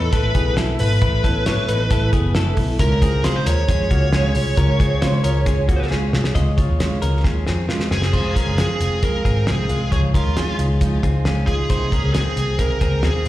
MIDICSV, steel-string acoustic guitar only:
0, 0, Header, 1, 2, 480
1, 0, Start_track
1, 0, Key_signature, -5, "major"
1, 0, Tempo, 445104
1, 1098, Time_signature, 4, 2, 24, 8
1, 14325, End_track
2, 0, Start_track
2, 0, Title_t, "Steel-string acoustic guitar"
2, 0, Program_c, 0, 25
2, 0, Note_on_c, 0, 59, 48
2, 0, Note_on_c, 0, 64, 49
2, 0, Note_on_c, 0, 69, 57
2, 127, Note_off_c, 0, 59, 0
2, 128, Note_on_c, 0, 57, 61
2, 130, Note_off_c, 0, 69, 0
2, 140, Note_off_c, 0, 64, 0
2, 140, Note_on_c, 0, 59, 55
2, 151, Note_on_c, 0, 64, 59
2, 158, Note_on_c, 0, 69, 60
2, 350, Note_off_c, 0, 69, 0
2, 363, Note_on_c, 0, 69, 53
2, 365, Note_off_c, 0, 64, 0
2, 373, Note_off_c, 0, 57, 0
2, 378, Note_on_c, 0, 64, 47
2, 379, Note_off_c, 0, 59, 0
2, 395, Note_on_c, 0, 59, 37
2, 607, Note_off_c, 0, 59, 0
2, 610, Note_off_c, 0, 69, 0
2, 613, Note_on_c, 0, 57, 68
2, 618, Note_off_c, 0, 64, 0
2, 620, Note_on_c, 0, 59, 74
2, 630, Note_on_c, 0, 64, 79
2, 634, Note_on_c, 0, 69, 82
2, 837, Note_off_c, 0, 69, 0
2, 850, Note_on_c, 0, 69, 46
2, 855, Note_off_c, 0, 57, 0
2, 856, Note_off_c, 0, 64, 0
2, 859, Note_off_c, 0, 59, 0
2, 869, Note_on_c, 0, 64, 46
2, 881, Note_on_c, 0, 59, 41
2, 1093, Note_off_c, 0, 59, 0
2, 1094, Note_off_c, 0, 69, 0
2, 1096, Note_on_c, 0, 57, 75
2, 1098, Note_off_c, 0, 64, 0
2, 1106, Note_on_c, 0, 59, 71
2, 1111, Note_on_c, 0, 64, 83
2, 1119, Note_on_c, 0, 69, 77
2, 1322, Note_off_c, 0, 69, 0
2, 1335, Note_on_c, 0, 69, 58
2, 1336, Note_off_c, 0, 57, 0
2, 1338, Note_off_c, 0, 64, 0
2, 1342, Note_off_c, 0, 59, 0
2, 1351, Note_on_c, 0, 64, 48
2, 1364, Note_on_c, 0, 59, 45
2, 1570, Note_off_c, 0, 59, 0
2, 1573, Note_on_c, 0, 57, 88
2, 1576, Note_off_c, 0, 69, 0
2, 1577, Note_off_c, 0, 64, 0
2, 1583, Note_on_c, 0, 59, 85
2, 1590, Note_on_c, 0, 64, 96
2, 1597, Note_on_c, 0, 69, 98
2, 1799, Note_off_c, 0, 69, 0
2, 1812, Note_on_c, 0, 69, 65
2, 1815, Note_off_c, 0, 57, 0
2, 1815, Note_off_c, 0, 64, 0
2, 1820, Note_off_c, 0, 59, 0
2, 1828, Note_on_c, 0, 64, 60
2, 1844, Note_on_c, 0, 59, 50
2, 2040, Note_on_c, 0, 57, 66
2, 2044, Note_off_c, 0, 59, 0
2, 2050, Note_off_c, 0, 64, 0
2, 2054, Note_off_c, 0, 69, 0
2, 2057, Note_on_c, 0, 59, 59
2, 2063, Note_on_c, 0, 64, 67
2, 2075, Note_on_c, 0, 69, 78
2, 2273, Note_off_c, 0, 69, 0
2, 2286, Note_on_c, 0, 69, 55
2, 2288, Note_off_c, 0, 57, 0
2, 2291, Note_off_c, 0, 64, 0
2, 2296, Note_off_c, 0, 59, 0
2, 2304, Note_on_c, 0, 64, 49
2, 2317, Note_on_c, 0, 59, 54
2, 2524, Note_off_c, 0, 59, 0
2, 2525, Note_on_c, 0, 57, 83
2, 2529, Note_off_c, 0, 64, 0
2, 2531, Note_off_c, 0, 69, 0
2, 2537, Note_on_c, 0, 59, 90
2, 2542, Note_on_c, 0, 64, 83
2, 2549, Note_on_c, 0, 69, 96
2, 2749, Note_off_c, 0, 69, 0
2, 2762, Note_on_c, 0, 69, 59
2, 2770, Note_off_c, 0, 57, 0
2, 2770, Note_off_c, 0, 64, 0
2, 2776, Note_off_c, 0, 59, 0
2, 2782, Note_on_c, 0, 64, 51
2, 2793, Note_on_c, 0, 59, 50
2, 3009, Note_off_c, 0, 69, 0
2, 3009, Note_on_c, 0, 49, 71
2, 3016, Note_off_c, 0, 59, 0
2, 3017, Note_on_c, 0, 56, 71
2, 3019, Note_off_c, 0, 64, 0
2, 3021, Note_on_c, 0, 61, 71
2, 3028, Note_on_c, 0, 65, 75
2, 3034, Note_on_c, 0, 68, 81
2, 3227, Note_off_c, 0, 68, 0
2, 3240, Note_on_c, 0, 68, 51
2, 3242, Note_off_c, 0, 65, 0
2, 3252, Note_off_c, 0, 49, 0
2, 3255, Note_on_c, 0, 65, 48
2, 3256, Note_off_c, 0, 56, 0
2, 3258, Note_off_c, 0, 61, 0
2, 3272, Note_on_c, 0, 61, 41
2, 3487, Note_off_c, 0, 68, 0
2, 3487, Note_on_c, 0, 49, 79
2, 3489, Note_off_c, 0, 61, 0
2, 3490, Note_off_c, 0, 65, 0
2, 3493, Note_on_c, 0, 56, 72
2, 3502, Note_on_c, 0, 61, 85
2, 3503, Note_on_c, 0, 65, 90
2, 3510, Note_on_c, 0, 68, 95
2, 3711, Note_off_c, 0, 68, 0
2, 3724, Note_on_c, 0, 68, 58
2, 3731, Note_off_c, 0, 49, 0
2, 3732, Note_off_c, 0, 65, 0
2, 3734, Note_off_c, 0, 56, 0
2, 3738, Note_off_c, 0, 61, 0
2, 3745, Note_on_c, 0, 65, 53
2, 3759, Note_on_c, 0, 61, 49
2, 3966, Note_on_c, 0, 56, 61
2, 3967, Note_off_c, 0, 61, 0
2, 3969, Note_off_c, 0, 68, 0
2, 3976, Note_off_c, 0, 65, 0
2, 3980, Note_on_c, 0, 61, 58
2, 3989, Note_on_c, 0, 65, 62
2, 3999, Note_on_c, 0, 68, 64
2, 4192, Note_off_c, 0, 68, 0
2, 4205, Note_on_c, 0, 68, 54
2, 4209, Note_off_c, 0, 65, 0
2, 4210, Note_off_c, 0, 56, 0
2, 4217, Note_off_c, 0, 61, 0
2, 4222, Note_on_c, 0, 65, 50
2, 4238, Note_on_c, 0, 61, 45
2, 4446, Note_off_c, 0, 61, 0
2, 4447, Note_on_c, 0, 49, 75
2, 4449, Note_off_c, 0, 65, 0
2, 4449, Note_off_c, 0, 68, 0
2, 4449, Note_on_c, 0, 56, 87
2, 4459, Note_on_c, 0, 61, 91
2, 4462, Note_on_c, 0, 65, 93
2, 4467, Note_on_c, 0, 68, 97
2, 4669, Note_off_c, 0, 68, 0
2, 4682, Note_on_c, 0, 68, 59
2, 4683, Note_off_c, 0, 65, 0
2, 4691, Note_off_c, 0, 49, 0
2, 4691, Note_off_c, 0, 56, 0
2, 4696, Note_off_c, 0, 61, 0
2, 4696, Note_on_c, 0, 65, 60
2, 4711, Note_on_c, 0, 61, 44
2, 4918, Note_on_c, 0, 49, 70
2, 4920, Note_off_c, 0, 61, 0
2, 4925, Note_on_c, 0, 56, 85
2, 4926, Note_off_c, 0, 65, 0
2, 4928, Note_off_c, 0, 68, 0
2, 4933, Note_on_c, 0, 61, 83
2, 4939, Note_on_c, 0, 65, 95
2, 4943, Note_on_c, 0, 68, 100
2, 5146, Note_off_c, 0, 68, 0
2, 5159, Note_on_c, 0, 68, 56
2, 5165, Note_off_c, 0, 65, 0
2, 5166, Note_off_c, 0, 49, 0
2, 5169, Note_off_c, 0, 56, 0
2, 5173, Note_off_c, 0, 61, 0
2, 5178, Note_on_c, 0, 65, 54
2, 5192, Note_on_c, 0, 61, 50
2, 5399, Note_off_c, 0, 61, 0
2, 5401, Note_on_c, 0, 49, 96
2, 5406, Note_off_c, 0, 65, 0
2, 5406, Note_off_c, 0, 68, 0
2, 5408, Note_on_c, 0, 56, 92
2, 5412, Note_on_c, 0, 61, 88
2, 5419, Note_on_c, 0, 65, 89
2, 5423, Note_on_c, 0, 68, 81
2, 5622, Note_off_c, 0, 68, 0
2, 5635, Note_on_c, 0, 68, 61
2, 5641, Note_off_c, 0, 65, 0
2, 5647, Note_off_c, 0, 49, 0
2, 5651, Note_off_c, 0, 56, 0
2, 5653, Note_off_c, 0, 61, 0
2, 5654, Note_on_c, 0, 65, 54
2, 5669, Note_on_c, 0, 61, 48
2, 5877, Note_off_c, 0, 61, 0
2, 5879, Note_on_c, 0, 56, 63
2, 5884, Note_off_c, 0, 68, 0
2, 5885, Note_off_c, 0, 65, 0
2, 5890, Note_on_c, 0, 61, 65
2, 5898, Note_on_c, 0, 65, 77
2, 5909, Note_on_c, 0, 68, 73
2, 6103, Note_off_c, 0, 68, 0
2, 6116, Note_on_c, 0, 68, 59
2, 6118, Note_off_c, 0, 65, 0
2, 6126, Note_off_c, 0, 56, 0
2, 6131, Note_on_c, 0, 65, 50
2, 6132, Note_off_c, 0, 61, 0
2, 6148, Note_on_c, 0, 61, 49
2, 6360, Note_off_c, 0, 61, 0
2, 6364, Note_off_c, 0, 68, 0
2, 6364, Note_on_c, 0, 49, 82
2, 6365, Note_off_c, 0, 65, 0
2, 6370, Note_on_c, 0, 56, 79
2, 6373, Note_on_c, 0, 61, 86
2, 6378, Note_on_c, 0, 65, 88
2, 6383, Note_on_c, 0, 68, 94
2, 6587, Note_off_c, 0, 68, 0
2, 6600, Note_on_c, 0, 68, 56
2, 6605, Note_off_c, 0, 65, 0
2, 6608, Note_off_c, 0, 49, 0
2, 6611, Note_off_c, 0, 56, 0
2, 6613, Note_off_c, 0, 61, 0
2, 6618, Note_on_c, 0, 65, 50
2, 6633, Note_on_c, 0, 61, 47
2, 6837, Note_off_c, 0, 61, 0
2, 6840, Note_on_c, 0, 49, 75
2, 6843, Note_off_c, 0, 65, 0
2, 6846, Note_off_c, 0, 68, 0
2, 6846, Note_on_c, 0, 56, 81
2, 6850, Note_on_c, 0, 61, 82
2, 6856, Note_on_c, 0, 65, 87
2, 6863, Note_on_c, 0, 68, 80
2, 7068, Note_off_c, 0, 68, 0
2, 7081, Note_on_c, 0, 68, 56
2, 7084, Note_off_c, 0, 65, 0
2, 7086, Note_off_c, 0, 49, 0
2, 7089, Note_off_c, 0, 56, 0
2, 7092, Note_off_c, 0, 61, 0
2, 7097, Note_on_c, 0, 65, 45
2, 7108, Note_on_c, 0, 61, 44
2, 7318, Note_off_c, 0, 61, 0
2, 7319, Note_on_c, 0, 49, 74
2, 7325, Note_on_c, 0, 56, 79
2, 7326, Note_off_c, 0, 65, 0
2, 7327, Note_off_c, 0, 68, 0
2, 7331, Note_on_c, 0, 61, 79
2, 7339, Note_on_c, 0, 65, 80
2, 7344, Note_on_c, 0, 68, 78
2, 7541, Note_off_c, 0, 68, 0
2, 7554, Note_on_c, 0, 68, 60
2, 7557, Note_off_c, 0, 65, 0
2, 7566, Note_off_c, 0, 49, 0
2, 7569, Note_off_c, 0, 56, 0
2, 7570, Note_on_c, 0, 65, 57
2, 7572, Note_off_c, 0, 61, 0
2, 7797, Note_on_c, 0, 56, 61
2, 7804, Note_off_c, 0, 68, 0
2, 7811, Note_off_c, 0, 65, 0
2, 7812, Note_on_c, 0, 61, 62
2, 7823, Note_on_c, 0, 65, 61
2, 7830, Note_on_c, 0, 68, 58
2, 8030, Note_off_c, 0, 68, 0
2, 8043, Note_on_c, 0, 68, 55
2, 8045, Note_off_c, 0, 56, 0
2, 8047, Note_off_c, 0, 65, 0
2, 8053, Note_off_c, 0, 61, 0
2, 8060, Note_on_c, 0, 65, 50
2, 8075, Note_on_c, 0, 61, 45
2, 8281, Note_on_c, 0, 49, 67
2, 8283, Note_off_c, 0, 61, 0
2, 8288, Note_off_c, 0, 68, 0
2, 8289, Note_off_c, 0, 65, 0
2, 8291, Note_on_c, 0, 56, 79
2, 8296, Note_on_c, 0, 61, 80
2, 8302, Note_on_c, 0, 65, 84
2, 8303, Note_on_c, 0, 68, 94
2, 8515, Note_off_c, 0, 68, 0
2, 8527, Note_off_c, 0, 49, 0
2, 8528, Note_on_c, 0, 68, 52
2, 8530, Note_off_c, 0, 65, 0
2, 8532, Note_off_c, 0, 56, 0
2, 8535, Note_off_c, 0, 61, 0
2, 8543, Note_on_c, 0, 65, 44
2, 8767, Note_on_c, 0, 53, 63
2, 8771, Note_off_c, 0, 68, 0
2, 8774, Note_off_c, 0, 65, 0
2, 8776, Note_on_c, 0, 56, 70
2, 8783, Note_on_c, 0, 60, 71
2, 8787, Note_on_c, 0, 65, 74
2, 8988, Note_off_c, 0, 65, 0
2, 9001, Note_on_c, 0, 65, 46
2, 9006, Note_off_c, 0, 60, 0
2, 9010, Note_off_c, 0, 53, 0
2, 9015, Note_off_c, 0, 56, 0
2, 9019, Note_on_c, 0, 60, 45
2, 9031, Note_on_c, 0, 56, 39
2, 9240, Note_off_c, 0, 56, 0
2, 9243, Note_on_c, 0, 53, 50
2, 9247, Note_off_c, 0, 65, 0
2, 9250, Note_off_c, 0, 60, 0
2, 9253, Note_on_c, 0, 56, 48
2, 9263, Note_on_c, 0, 60, 58
2, 9274, Note_on_c, 0, 65, 59
2, 9467, Note_off_c, 0, 65, 0
2, 9480, Note_on_c, 0, 65, 50
2, 9484, Note_off_c, 0, 60, 0
2, 9489, Note_off_c, 0, 53, 0
2, 9494, Note_off_c, 0, 56, 0
2, 9496, Note_on_c, 0, 60, 43
2, 9513, Note_on_c, 0, 56, 36
2, 9721, Note_off_c, 0, 56, 0
2, 9725, Note_on_c, 0, 53, 60
2, 9727, Note_off_c, 0, 60, 0
2, 9727, Note_off_c, 0, 65, 0
2, 9734, Note_on_c, 0, 56, 64
2, 9740, Note_on_c, 0, 60, 75
2, 9745, Note_on_c, 0, 65, 72
2, 9945, Note_off_c, 0, 65, 0
2, 9958, Note_on_c, 0, 65, 49
2, 9962, Note_off_c, 0, 60, 0
2, 9970, Note_off_c, 0, 53, 0
2, 9974, Note_off_c, 0, 56, 0
2, 9975, Note_on_c, 0, 60, 39
2, 9992, Note_on_c, 0, 56, 35
2, 10199, Note_off_c, 0, 56, 0
2, 10199, Note_on_c, 0, 53, 50
2, 10206, Note_off_c, 0, 65, 0
2, 10210, Note_off_c, 0, 60, 0
2, 10212, Note_on_c, 0, 56, 61
2, 10223, Note_on_c, 0, 60, 59
2, 10234, Note_on_c, 0, 65, 57
2, 10428, Note_off_c, 0, 65, 0
2, 10441, Note_on_c, 0, 65, 44
2, 10445, Note_off_c, 0, 60, 0
2, 10447, Note_off_c, 0, 53, 0
2, 10454, Note_off_c, 0, 56, 0
2, 10458, Note_on_c, 0, 60, 40
2, 10475, Note_on_c, 0, 56, 36
2, 10683, Note_off_c, 0, 56, 0
2, 10685, Note_on_c, 0, 49, 70
2, 10688, Note_off_c, 0, 65, 0
2, 10690, Note_on_c, 0, 53, 69
2, 10691, Note_off_c, 0, 60, 0
2, 10696, Note_on_c, 0, 56, 64
2, 10702, Note_on_c, 0, 63, 72
2, 10707, Note_on_c, 0, 65, 75
2, 10911, Note_off_c, 0, 65, 0
2, 10924, Note_on_c, 0, 65, 47
2, 10930, Note_off_c, 0, 49, 0
2, 10930, Note_off_c, 0, 63, 0
2, 10933, Note_off_c, 0, 53, 0
2, 10936, Note_off_c, 0, 56, 0
2, 10943, Note_on_c, 0, 63, 44
2, 10955, Note_on_c, 0, 56, 37
2, 11162, Note_on_c, 0, 53, 51
2, 11163, Note_off_c, 0, 56, 0
2, 11170, Note_off_c, 0, 65, 0
2, 11171, Note_off_c, 0, 63, 0
2, 11176, Note_on_c, 0, 56, 57
2, 11184, Note_on_c, 0, 63, 57
2, 11196, Note_on_c, 0, 65, 63
2, 11395, Note_off_c, 0, 65, 0
2, 11408, Note_on_c, 0, 65, 52
2, 11409, Note_off_c, 0, 53, 0
2, 11409, Note_off_c, 0, 63, 0
2, 11416, Note_off_c, 0, 56, 0
2, 11422, Note_on_c, 0, 63, 43
2, 11440, Note_on_c, 0, 56, 36
2, 11640, Note_on_c, 0, 49, 80
2, 11641, Note_off_c, 0, 56, 0
2, 11650, Note_off_c, 0, 63, 0
2, 11650, Note_on_c, 0, 53, 69
2, 11652, Note_off_c, 0, 65, 0
2, 11654, Note_on_c, 0, 56, 83
2, 11663, Note_on_c, 0, 63, 83
2, 11666, Note_on_c, 0, 65, 90
2, 11871, Note_off_c, 0, 65, 0
2, 11884, Note_on_c, 0, 65, 51
2, 11888, Note_off_c, 0, 49, 0
2, 11889, Note_off_c, 0, 63, 0
2, 11894, Note_off_c, 0, 53, 0
2, 11895, Note_off_c, 0, 56, 0
2, 11902, Note_on_c, 0, 63, 52
2, 11913, Note_on_c, 0, 56, 40
2, 12123, Note_on_c, 0, 53, 59
2, 12125, Note_off_c, 0, 56, 0
2, 12131, Note_off_c, 0, 63, 0
2, 12131, Note_off_c, 0, 65, 0
2, 12138, Note_on_c, 0, 56, 62
2, 12144, Note_on_c, 0, 63, 63
2, 12156, Note_on_c, 0, 65, 66
2, 12355, Note_off_c, 0, 65, 0
2, 12368, Note_on_c, 0, 65, 48
2, 12370, Note_off_c, 0, 53, 0
2, 12373, Note_off_c, 0, 63, 0
2, 12378, Note_off_c, 0, 56, 0
2, 12386, Note_on_c, 0, 63, 38
2, 12400, Note_on_c, 0, 56, 41
2, 12607, Note_on_c, 0, 48, 69
2, 12613, Note_off_c, 0, 65, 0
2, 12615, Note_on_c, 0, 51, 68
2, 12618, Note_off_c, 0, 56, 0
2, 12620, Note_off_c, 0, 63, 0
2, 12622, Note_on_c, 0, 58, 78
2, 12624, Note_on_c, 0, 60, 71
2, 12630, Note_on_c, 0, 68, 74
2, 12833, Note_off_c, 0, 68, 0
2, 12846, Note_on_c, 0, 68, 43
2, 12852, Note_off_c, 0, 48, 0
2, 12852, Note_off_c, 0, 60, 0
2, 12856, Note_off_c, 0, 51, 0
2, 12860, Note_off_c, 0, 58, 0
2, 12865, Note_on_c, 0, 60, 41
2, 12877, Note_on_c, 0, 58, 37
2, 13091, Note_off_c, 0, 58, 0
2, 13092, Note_off_c, 0, 68, 0
2, 13092, Note_on_c, 0, 51, 54
2, 13101, Note_off_c, 0, 60, 0
2, 13104, Note_on_c, 0, 58, 57
2, 13114, Note_on_c, 0, 60, 59
2, 13124, Note_on_c, 0, 68, 53
2, 13320, Note_off_c, 0, 68, 0
2, 13333, Note_on_c, 0, 68, 50
2, 13335, Note_off_c, 0, 51, 0
2, 13341, Note_off_c, 0, 58, 0
2, 13341, Note_off_c, 0, 60, 0
2, 13354, Note_on_c, 0, 60, 47
2, 13367, Note_on_c, 0, 58, 42
2, 13575, Note_off_c, 0, 68, 0
2, 13576, Note_off_c, 0, 58, 0
2, 13576, Note_on_c, 0, 48, 67
2, 13579, Note_off_c, 0, 60, 0
2, 13582, Note_on_c, 0, 51, 71
2, 13589, Note_on_c, 0, 58, 69
2, 13592, Note_on_c, 0, 60, 70
2, 13601, Note_on_c, 0, 68, 75
2, 13798, Note_off_c, 0, 68, 0
2, 13811, Note_on_c, 0, 68, 52
2, 13817, Note_off_c, 0, 48, 0
2, 13820, Note_off_c, 0, 51, 0
2, 13820, Note_off_c, 0, 60, 0
2, 13823, Note_off_c, 0, 58, 0
2, 13833, Note_on_c, 0, 60, 45
2, 13842, Note_on_c, 0, 58, 42
2, 14046, Note_off_c, 0, 58, 0
2, 14047, Note_on_c, 0, 51, 57
2, 14054, Note_off_c, 0, 68, 0
2, 14056, Note_off_c, 0, 60, 0
2, 14059, Note_on_c, 0, 58, 55
2, 14069, Note_on_c, 0, 60, 58
2, 14080, Note_on_c, 0, 68, 59
2, 14280, Note_off_c, 0, 68, 0
2, 14293, Note_off_c, 0, 51, 0
2, 14295, Note_off_c, 0, 60, 0
2, 14299, Note_off_c, 0, 58, 0
2, 14325, End_track
0, 0, End_of_file